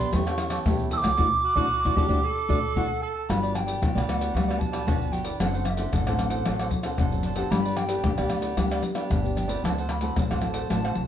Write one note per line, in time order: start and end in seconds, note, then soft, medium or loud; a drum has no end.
0.00 0.12 B2 medium
0.00 0.12 B3 medium
0.00 0.12 D4 medium
0.00 0.12 G4 medium
0.00 0.13 G4 medium
0.00 0.11 B4 medium
0.00 0.11 D5 medium
0.00 0.17 C6 medium
0.13 0.58 E2 medium
0.13 0.64 E3 medium
0.13 0.22 A3 medium
0.13 0.23 C#4 medium
0.13 0.25 E4 medium
0.13 0.23 G4 medium
0.13 0.25 A4 medium
0.13 0.26 C#5 medium
0.13 0.25 G5 medium
0.13 0.66 C#6 medium
0.13 pandeiro medium
0.13 maracas medium
0.13 surdo medium
0.26 0.63 A3 medium
0.26 0.63 C#4 medium
0.26 0.63 G4 medium
0.26 0.38 A4 medium
0.26 0.38 C#5 medium
0.26 0.39 G5 medium
0.26 pandeiro soft
0.26 tamborim medium
0.26 maracas soft
0.38 muted cavaquinho stroke soft
0.38 pandeiro medium
0.38 tamborim medium
0.38 maracas medium
0.50 0.65 A4 medium
0.50 0.64 C#5 medium
0.50 0.64 G5 medium
0.50 pandeiro medium
0.50 tamborim medium
0.50 maracas medium
0.66 0.99 E2 loud
0.66 1.17 E3 medium
0.66 0.91 A3 medium
0.66 0.92 C#4 medium
0.66 0.89 E4 medium
0.66 0.92 G4 medium
0.66 0.91 A4 medium
0.66 0.91 C#5 medium
0.66 0.92 G5 medium
0.66 pandeiro medium
0.66 tamborim medium
0.66 maracas medium
0.66 surdo loud
0.80 pandeiro soft
0.80 maracas soft
0.90 1.04 E4 soft
0.90 1.02 A4 medium
0.90 1.01 C#5 medium
0.90 1.01 G5 medium
0.90 0.98 E6 loud
0.90 pandeiro medium
0.97 2.73 D6 loud
1.02 1.16 C#2 medium
1.02 1.18 A3 medium
1.02 1.18 E4 medium
1.02 1.18 F#4 medium
1.02 1.17 A4 medium
1.02 1.16 C#5 medium
1.02 1.16 G5 medium
1.02 pandeiro medium
1.02 tamborim medium
1.02 maracas medium
1.17 1.28 D2 loud
1.17 1.28 D4 loud
1.17 1.28 E4 medium
1.17 1.26 F#4 loud
1.17 1.28 F#4 loud
1.17 1.27 A4 loud
1.17 1.27 D5 loud
1.17 surdo loud
1.44 1.56 F#4 medium
1.55 1.67 D2 medium
1.55 1.66 D4 medium
1.55 1.66 E4 medium
1.55 1.98 F#4 medium
1.55 1.65 F#4 medium
1.55 1.66 F#4 medium
1.55 1.65 A4 medium
1.55 1.65 D5 medium
1.55 surdo loud
1.84 1.95 D2 medium
1.84 1.93 D4 loud
1.84 1.94 E4 loud
1.84 1.93 F#4 loud
1.84 1.93 F#4 medium
1.84 1.93 A4 medium
1.84 1.93 D5 loud
1.84 surdo loud
1.96 2.07 D2 medium
1.96 2.06 D4 loud
1.96 2.06 E4 loud
1.96 2.06 F#4 loud
1.96 2.06 F#4 medium
1.96 2.26 G4 medium
1.96 2.06 A4 medium
1.96 2.06 D5 medium
1.96 surdo loud
2.09 2.19 D2 loud
2.09 2.18 D4 loud
2.09 2.19 E4 loud
2.09 2.19 F#4 loud
2.09 2.18 F#4 medium
2.09 2.18 A4 medium
2.09 2.18 D5 medium
2.09 surdo medium
2.24 3.02 A4 loud
2.49 2.59 D2 medium
2.49 2.58 D4 loud
2.49 2.58 E4 loud
2.49 2.58 F#4 medium
2.49 2.58 A4 medium
2.49 2.58 D5 medium
2.49 surdo medium
2.76 2.86 D2 medium
2.76 2.85 D4 medium
2.76 2.85 E4 medium
2.76 2.85 F#4 medium
2.76 2.85 A4 medium
2.76 2.85 D5 medium
2.76 3.03 F#5 medium
2.76 surdo loud
3.01 3.27 A4 medium
3.01 3.31 A5 loud
3.29 3.74 G1 loud
3.29 3.80 G3 medium
3.29 3.78 B3 medium
3.29 3.78 D4 medium
3.29 3.41 F#4 soft
3.29 3.79 F#4 medium
3.29 3.41 G4 medium
3.29 3.42 B4 medium
3.29 3.42 D5 medium
3.29 3.53 B5 loud
3.29 pandeiro medium
3.29 tamborim medium
3.29 maracas medium
3.29 surdo medium
3.43 3.54 G4 medium
3.43 3.55 B4 medium
3.43 3.55 D5 medium
3.43 pandeiro soft
3.43 maracas soft
3.54 4.04 G5 loud
3.54 3.58 A5 medium
3.54 muted cavaquinho stroke soft
3.54 pandeiro medium
3.54 tamborim medium
3.54 maracas medium
3.67 3.81 G4 soft
3.67 3.80 B4 medium
3.67 3.80 D5 medium
3.67 pandeiro medium
3.67 maracas medium
3.81 3.97 G1 medium
3.81 4.33 D3 medium
3.81 4.05 B3 medium
3.81 4.05 D4 medium
3.81 3.94 F#4 soft
3.81 4.05 F#4 medium
3.81 3.94 G4 medium
3.81 3.95 B4 soft
3.81 3.94 D5 soft
3.81 pandeiro medium
3.81 tamborim medium
3.81 maracas medium
3.81 surdo loud
3.95 4.29 D2 medium
3.95 4.20 G4 medium
3.95 4.19 B4 medium
3.95 4.18 D5 medium
3.95 pandeiro soft
3.95 tamborim medium
3.95 maracas soft
4.07 4.44 B3 medium
4.07 4.44 D4 medium
4.07 4.44 F#4 medium
4.07 4.60 F#5 loud
4.07 pandeiro medium
4.07 tamborim medium
4.07 maracas medium
4.19 4.34 G4 medium
4.19 4.33 B4 medium
4.19 4.33 D5 medium
4.19 pandeiro medium
4.19 maracas medium
4.34 4.57 D2 medium
4.34 4.85 G3 medium
4.34 4.47 F#4 soft
4.34 4.47 G4 soft
4.34 4.47 B4 soft
4.34 4.47 D5 soft
4.34 pandeiro medium
4.34 tamborim medium
4.34 maracas medium
4.34 surdo medium
4.48 4.85 B3 medium
4.48 4.85 D4 medium
4.48 4.85 F#4 medium
4.48 4.58 G4 soft
4.48 4.59 B4 medium
4.48 4.59 D5 medium
4.48 pandeiro soft
4.48 tamborim medium
4.48 maracas soft
4.59 5.13 A5 loud
4.59 muted cavaquinho stroke soft
4.59 pandeiro medium
4.59 surdo medium
4.72 4.86 G4 medium
4.72 4.86 B4 medium
4.72 4.86 D5 medium
4.72 pandeiro medium
4.72 tamborim medium
4.72 maracas medium
4.87 5.32 G1 medium
4.87 5.38 D3 soft
4.87 5.37 B3 soft
4.87 5.37 D4 soft
4.87 5.11 F#4 medium
4.87 5.37 F#4 soft
4.87 5.12 G4 medium
4.87 5.12 B4 medium
4.87 5.13 D5 medium
4.87 pandeiro medium
4.87 tamborim medium
4.87 maracas medium
4.87 surdo loud
5.02 pandeiro soft
5.02 maracas soft
5.11 5.25 F#4 medium
5.11 5.26 G4 medium
5.11 5.24 B4 medium
5.11 5.24 D5 medium
5.11 5.39 G5 medium
5.11 pandeiro medium
5.11 maracas medium
5.25 5.39 G4 medium
5.25 5.39 B4 medium
5.25 5.38 D5 medium
5.25 pandeiro medium
5.25 maracas medium
5.40 5.85 F#1 medium
5.40 5.92 F#3 medium
5.40 5.66 C4 medium
5.40 5.53 D4 medium
5.40 5.66 D4 medium
5.40 5.53 A4 medium
5.40 5.66 A4 medium
5.40 5.53 C5 medium
5.40 5.64 F#5 medium
5.40 5.52 F#5 medium
5.40 pandeiro medium
5.40 tamborim medium
5.40 maracas medium
5.40 surdo medium
5.53 5.64 A4 medium
5.53 5.65 C5 medium
5.53 5.65 F#5 medium
5.53 pandeiro soft
5.53 maracas soft
5.64 5.94 E5 medium
5.64 5.69 F#5 medium
5.64 muted cavaquinho stroke soft
5.64 pandeiro medium
5.64 tamborim medium
5.64 maracas medium
5.77 6.02 C4 medium
5.77 6.02 D4 medium
5.77 5.91 A4 soft
5.77 6.02 A4 medium
5.77 5.91 C5 medium
5.77 5.91 F#5 medium
5.77 pandeiro medium
5.77 maracas medium
5.92 6.08 F#1 medium
5.92 6.44 F#3 medium
5.92 6.05 D4 medium
5.92 6.05 A4 medium
5.92 6.06 C5 medium
5.92 6.75 F#5 medium
5.92 6.05 F#5 medium
5.92 pandeiro medium
5.92 tamborim medium
5.92 maracas medium
5.92 surdo loud
6.06 6.41 A1 medium
6.06 6.43 C4 medium
6.06 6.43 D4 medium
6.06 6.31 A4 medium
6.06 6.44 A4 medium
6.06 6.30 C5 medium
6.06 6.29 F#5 medium
6.06 pandeiro soft
6.06 tamborim medium
6.06 maracas soft
6.19 pandeiro medium
6.19 tamborim medium
6.19 maracas medium
6.30 6.45 A4 medium
6.30 6.44 C5 medium
6.30 6.44 F#5 medium
6.30 pandeiro medium
6.30 maracas medium
6.46 6.69 A1 loud
6.46 6.97 F#3 medium
6.46 6.72 C4 medium
6.46 6.58 D4 soft
6.46 6.72 D4 medium
6.46 6.58 A4 soft
6.46 6.72 A4 medium
6.46 6.59 C5 soft
6.46 6.59 F#5 medium
6.46 pandeiro medium
6.46 tamborim medium
6.46 maracas medium
6.46 surdo medium
6.59 6.71 A4 medium
6.59 6.71 C5 medium
6.59 6.72 F#5 medium
6.59 pandeiro soft
6.59 tamborim medium
6.59 maracas soft
6.71 muted cavaquinho stroke soft
6.71 pandeiro medium
6.71 surdo medium
6.83 7.08 C4 medium
6.83 7.08 D4 medium
6.83 6.98 A4 medium
6.83 7.08 A4 medium
6.83 6.98 C5 medium
6.83 6.97 F#5 medium
6.83 pandeiro medium
6.83 tamborim medium
6.83 maracas medium
6.98 7.44 F#1 medium
6.98 7.50 F#3 medium
6.98 7.24 D4 medium
6.98 7.24 A4 medium
6.98 7.24 C5 medium
6.98 7.04 F#5 medium
6.98 pandeiro medium
6.98 tamborim medium
6.98 maracas medium
6.98 surdo loud
7.02 7.25 F#5 medium
7.12 7.35 C4 medium
7.12 7.35 D4 medium
7.12 7.35 A4 medium
7.12 pandeiro soft
7.12 maracas soft
7.23 7.38 D4 medium
7.23 7.37 A4 soft
7.23 7.36 C5 medium
7.23 7.36 F#5 medium
7.23 7.52 A5 medium
7.23 pandeiro medium
7.23 maracas medium
7.36 7.86 B3 medium
7.36 7.87 D4 medium
7.36 7.87 G4 medium
7.36 7.51 A4 medium
7.36 7.50 C5 medium
7.36 7.50 F#5 medium
7.36 pandeiro medium
7.36 maracas medium
7.50 7.97 G1 medium
7.50 8.02 G3 medium
7.50 7.64 D4 medium
7.50 7.65 G4 medium
7.50 7.65 B4 medium
7.50 7.64 D5 medium
7.50 7.78 B5 loud
7.50 pandeiro medium
7.50 tamborim medium
7.50 maracas medium
7.50 surdo medium
7.65 7.76 G4 medium
7.65 7.76 B4 medium
7.65 7.77 D5 medium
7.65 pandeiro soft
7.65 maracas soft
7.76 8.23 G5 medium
7.76 muted cavaquinho stroke soft
7.76 pandeiro medium
7.76 tamborim medium
7.76 maracas medium
7.88 8.13 B3 medium
7.88 8.13 D4 medium
7.88 8.13 G4 medium
7.88 8.03 G4 medium
7.88 8.03 B4 medium
7.88 8.02 D5 medium
7.88 pandeiro medium
7.88 maracas medium
8.04 8.20 G1 medium
8.04 8.55 D3 medium
8.04 8.17 D4 soft
8.04 8.17 G4 soft
8.04 8.17 B4 medium
8.04 8.17 D5 medium
8.04 pandeiro medium
8.04 tamborim medium
8.04 maracas medium
8.04 surdo loud
8.18 8.52 D2 medium
8.18 8.54 B3 medium
8.18 8.54 D4 medium
8.18 8.42 G4 medium
8.18 8.54 G4 medium
8.18 8.41 B4 medium
8.18 8.40 D5 medium
8.18 pandeiro soft
8.18 tamborim medium
8.18 maracas soft
8.24 8.32 G5 medium
8.29 8.84 F#5 medium
8.29 pandeiro medium
8.29 tamborim medium
8.29 maracas medium
8.42 8.56 G4 medium
8.42 8.56 B4 medium
8.42 8.56 D5 medium
8.42 pandeiro medium
8.42 maracas medium
8.56 8.80 D2 medium
8.56 9.08 G3 medium
8.56 8.93 B3 medium
8.56 8.70 D4 soft
8.56 8.93 D4 medium
8.56 8.70 G4 medium
8.56 8.93 G4 medium
8.56 8.70 B4 medium
8.56 pandeiro medium
8.56 tamborim medium
8.56 maracas medium
8.56 surdo medium
8.72 8.83 G4 medium
8.72 8.83 B4 medium
8.72 8.83 D5 medium
8.72 pandeiro soft
8.72 tamborim medium
8.72 maracas soft
8.83 muted cavaquinho stroke soft
8.83 pandeiro medium
8.83 maracas medium
8.95 9.19 B3 medium
8.95 9.19 D4 medium
8.95 9.19 G4 medium
8.95 9.10 G4 medium
8.95 9.09 B4 medium
8.95 9.09 D5 medium
8.95 pandeiro medium
8.95 tamborim medium
8.95 maracas medium
9.10 9.56 G1 medium
9.10 9.61 D3 medium
9.10 9.35 D4 medium
9.10 9.35 G4 medium
9.10 9.36 B4 medium
9.10 9.37 D5 medium
9.10 pandeiro medium
9.10 tamborim medium
9.10 maracas medium
9.10 surdo loud
9.23 9.46 B3 medium
9.23 9.46 D4 medium
9.23 9.47 G4 medium
9.23 pandeiro soft
9.23 maracas soft
9.36 9.49 D4 medium
9.36 9.48 G4 soft
9.36 9.48 B4 medium
9.36 9.46 D5 medium
9.36 9.66 G5 medium
9.36 pandeiro medium
9.36 maracas medium
9.47 9.98 A3 medium
9.47 9.98 C4 medium
9.47 9.99 F#4 medium
9.47 9.62 G4 medium
9.47 9.62 B4 medium
9.47 9.61 D5 medium
9.47 pandeiro medium
9.47 maracas medium
9.63 10.09 D2 loud
9.63 10.14 D3 medium
9.63 9.76 D4 soft
9.63 9.76 A4 medium
9.63 9.77 C5 medium
9.63 9.77 F#5 medium
9.63 9.92 A5 medium
9.63 pandeiro medium
9.63 tamborim medium
9.63 maracas medium
9.63 surdo medium
9.78 9.89 A4 medium
9.78 9.90 C5 medium
9.78 9.90 F#5 medium
9.78 pandeiro soft
9.78 maracas soft
9.89 10.19 B5 medium
9.89 muted cavaquinho stroke soft
9.89 pandeiro medium
9.89 tamborim medium
9.89 maracas medium
10.01 10.25 A3 medium
10.01 10.25 C4 medium
10.01 10.25 F#4 medium
10.01 10.16 A4 medium
10.01 10.15 C5 medium
10.01 10.15 F#5 medium
10.01 pandeiro medium
10.01 maracas medium
10.16 10.33 D2 medium
10.16 10.67 A2 medium
10.16 10.29 D4 soft
10.16 10.30 A4 soft
10.16 10.30 C5 medium
10.16 10.29 F#5 soft
10.16 11.07 A5 medium
10.16 pandeiro medium
10.16 tamborim medium
10.16 maracas medium
10.16 surdo loud
10.30 10.65 A1 medium
10.30 10.67 A3 medium
10.30 10.67 C4 medium
10.30 10.67 F#4 medium
10.30 10.54 A4 medium
10.30 10.54 C5 medium
10.30 10.53 F#5 medium
10.30 pandeiro soft
10.30 tamborim medium
10.30 maracas soft
10.41 pandeiro medium
10.41 tamborim medium
10.54 10.68 A4 medium
10.54 10.68 C5 medium
10.54 10.68 F#5 medium
10.54 pandeiro medium
10.54 maracas medium
10.70 10.93 A1 medium
10.70 11.07 D3 medium
10.70 11.06 A3 medium
10.70 11.06 C4 medium
10.70 10.82 D4 soft
10.70 11.06 F#4 medium
10.70 10.82 A4 soft
10.70 10.83 C5 medium
10.70 10.83 F#5 soft
10.70 pandeiro medium
10.70 tamborim medium
10.70 maracas medium
10.70 surdo medium
10.84 10.95 A4 medium
10.84 10.95 C5 medium
10.84 10.96 F#5 medium
10.84 pandeiro soft
10.84 tamborim medium
10.84 maracas soft
10.95 11.07 C2 medium
10.95 muted cavaquinho stroke soft
10.95 pandeiro medium